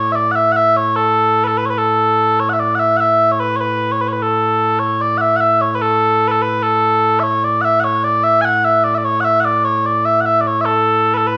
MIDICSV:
0, 0, Header, 1, 2, 480
1, 0, Start_track
1, 0, Key_signature, 3, "major"
1, 0, Tempo, 404040
1, 666, Time_signature, 6, 3, 24, 8
1, 13509, End_track
2, 0, Start_track
2, 0, Title_t, "Bagpipes"
2, 0, Program_c, 0, 109
2, 0, Note_on_c, 0, 45, 89
2, 0, Note_on_c, 0, 73, 93
2, 143, Note_off_c, 0, 73, 0
2, 143, Note_on_c, 0, 76, 88
2, 185, Note_off_c, 0, 76, 0
2, 185, Note_on_c, 0, 74, 88
2, 374, Note_off_c, 0, 74, 0
2, 374, Note_on_c, 0, 78, 84
2, 424, Note_off_c, 0, 78, 0
2, 424, Note_on_c, 0, 76, 84
2, 620, Note_off_c, 0, 76, 0
2, 620, Note_on_c, 0, 78, 102
2, 671, Note_off_c, 0, 78, 0
2, 671, Note_on_c, 0, 76, 102
2, 910, Note_off_c, 0, 76, 0
2, 910, Note_on_c, 0, 73, 84
2, 1142, Note_off_c, 0, 73, 0
2, 1142, Note_on_c, 0, 69, 90
2, 1711, Note_off_c, 0, 69, 0
2, 1711, Note_on_c, 0, 71, 78
2, 1750, Note_off_c, 0, 71, 0
2, 1750, Note_on_c, 0, 69, 78
2, 1871, Note_off_c, 0, 69, 0
2, 1871, Note_on_c, 0, 71, 77
2, 1971, Note_off_c, 0, 71, 0
2, 1971, Note_on_c, 0, 73, 69
2, 2023, Note_off_c, 0, 73, 0
2, 2023, Note_on_c, 0, 71, 69
2, 2115, Note_off_c, 0, 71, 0
2, 2115, Note_on_c, 0, 69, 89
2, 2851, Note_off_c, 0, 69, 0
2, 2851, Note_on_c, 0, 73, 94
2, 2962, Note_off_c, 0, 73, 0
2, 2962, Note_on_c, 0, 78, 73
2, 3012, Note_off_c, 0, 78, 0
2, 3012, Note_on_c, 0, 76, 73
2, 3086, Note_off_c, 0, 76, 0
2, 3086, Note_on_c, 0, 74, 85
2, 3269, Note_off_c, 0, 74, 0
2, 3269, Note_on_c, 0, 78, 87
2, 3321, Note_off_c, 0, 78, 0
2, 3321, Note_on_c, 0, 76, 87
2, 3529, Note_off_c, 0, 76, 0
2, 3529, Note_on_c, 0, 78, 96
2, 3571, Note_off_c, 0, 78, 0
2, 3571, Note_on_c, 0, 76, 96
2, 3939, Note_off_c, 0, 76, 0
2, 3939, Note_on_c, 0, 73, 78
2, 4039, Note_off_c, 0, 73, 0
2, 4039, Note_on_c, 0, 71, 88
2, 4232, Note_off_c, 0, 71, 0
2, 4232, Note_on_c, 0, 73, 81
2, 4285, Note_off_c, 0, 73, 0
2, 4285, Note_on_c, 0, 71, 81
2, 4657, Note_off_c, 0, 71, 0
2, 4657, Note_on_c, 0, 73, 82
2, 4766, Note_off_c, 0, 73, 0
2, 4766, Note_on_c, 0, 71, 78
2, 4851, Note_off_c, 0, 71, 0
2, 4851, Note_on_c, 0, 73, 55
2, 4904, Note_off_c, 0, 73, 0
2, 4904, Note_on_c, 0, 71, 55
2, 5017, Note_off_c, 0, 71, 0
2, 5017, Note_on_c, 0, 69, 74
2, 5696, Note_off_c, 0, 69, 0
2, 5696, Note_on_c, 0, 73, 87
2, 5954, Note_off_c, 0, 73, 0
2, 5954, Note_on_c, 0, 74, 80
2, 6151, Note_off_c, 0, 74, 0
2, 6151, Note_on_c, 0, 78, 88
2, 6192, Note_off_c, 0, 78, 0
2, 6192, Note_on_c, 0, 76, 88
2, 6374, Note_off_c, 0, 76, 0
2, 6374, Note_on_c, 0, 78, 103
2, 6424, Note_off_c, 0, 78, 0
2, 6424, Note_on_c, 0, 76, 103
2, 6666, Note_off_c, 0, 76, 0
2, 6666, Note_on_c, 0, 73, 84
2, 6834, Note_off_c, 0, 73, 0
2, 6834, Note_on_c, 0, 71, 66
2, 6910, Note_off_c, 0, 71, 0
2, 6910, Note_on_c, 0, 69, 95
2, 7458, Note_off_c, 0, 69, 0
2, 7458, Note_on_c, 0, 71, 86
2, 7501, Note_off_c, 0, 71, 0
2, 7501, Note_on_c, 0, 69, 86
2, 7626, Note_off_c, 0, 69, 0
2, 7626, Note_on_c, 0, 71, 81
2, 7873, Note_off_c, 0, 71, 0
2, 7873, Note_on_c, 0, 69, 91
2, 8550, Note_off_c, 0, 69, 0
2, 8550, Note_on_c, 0, 76, 91
2, 8592, Note_off_c, 0, 76, 0
2, 8592, Note_on_c, 0, 73, 91
2, 8838, Note_off_c, 0, 73, 0
2, 8838, Note_on_c, 0, 74, 86
2, 9046, Note_off_c, 0, 74, 0
2, 9046, Note_on_c, 0, 78, 97
2, 9086, Note_off_c, 0, 78, 0
2, 9087, Note_on_c, 0, 76, 97
2, 9269, Note_off_c, 0, 76, 0
2, 9269, Note_on_c, 0, 78, 101
2, 9316, Note_off_c, 0, 78, 0
2, 9316, Note_on_c, 0, 73, 101
2, 9550, Note_off_c, 0, 73, 0
2, 9550, Note_on_c, 0, 74, 95
2, 9784, Note_off_c, 0, 74, 0
2, 9784, Note_on_c, 0, 76, 107
2, 9996, Note_off_c, 0, 76, 0
2, 9996, Note_on_c, 0, 80, 102
2, 10040, Note_off_c, 0, 80, 0
2, 10040, Note_on_c, 0, 78, 102
2, 10274, Note_off_c, 0, 78, 0
2, 10274, Note_on_c, 0, 76, 97
2, 10502, Note_off_c, 0, 76, 0
2, 10502, Note_on_c, 0, 74, 94
2, 10629, Note_off_c, 0, 74, 0
2, 10629, Note_on_c, 0, 76, 75
2, 10667, Note_off_c, 0, 76, 0
2, 10667, Note_on_c, 0, 74, 75
2, 10745, Note_off_c, 0, 74, 0
2, 10745, Note_on_c, 0, 73, 100
2, 10935, Note_off_c, 0, 73, 0
2, 10935, Note_on_c, 0, 78, 95
2, 10986, Note_off_c, 0, 78, 0
2, 10986, Note_on_c, 0, 76, 95
2, 11173, Note_off_c, 0, 76, 0
2, 11173, Note_on_c, 0, 78, 102
2, 11226, Note_off_c, 0, 78, 0
2, 11226, Note_on_c, 0, 74, 102
2, 11458, Note_off_c, 0, 74, 0
2, 11458, Note_on_c, 0, 73, 88
2, 11708, Note_off_c, 0, 73, 0
2, 11708, Note_on_c, 0, 74, 85
2, 11943, Note_off_c, 0, 74, 0
2, 11943, Note_on_c, 0, 76, 87
2, 12129, Note_off_c, 0, 76, 0
2, 12129, Note_on_c, 0, 78, 73
2, 12187, Note_off_c, 0, 78, 0
2, 12187, Note_on_c, 0, 76, 99
2, 12366, Note_off_c, 0, 76, 0
2, 12366, Note_on_c, 0, 74, 66
2, 12437, Note_off_c, 0, 74, 0
2, 12437, Note_on_c, 0, 73, 89
2, 12603, Note_off_c, 0, 73, 0
2, 12603, Note_on_c, 0, 76, 90
2, 12655, Note_off_c, 0, 76, 0
2, 12655, Note_on_c, 0, 69, 90
2, 13234, Note_off_c, 0, 69, 0
2, 13234, Note_on_c, 0, 71, 83
2, 13274, Note_off_c, 0, 71, 0
2, 13274, Note_on_c, 0, 69, 83
2, 13387, Note_off_c, 0, 69, 0
2, 13387, Note_on_c, 0, 71, 77
2, 13509, Note_off_c, 0, 45, 0
2, 13509, Note_off_c, 0, 71, 0
2, 13509, End_track
0, 0, End_of_file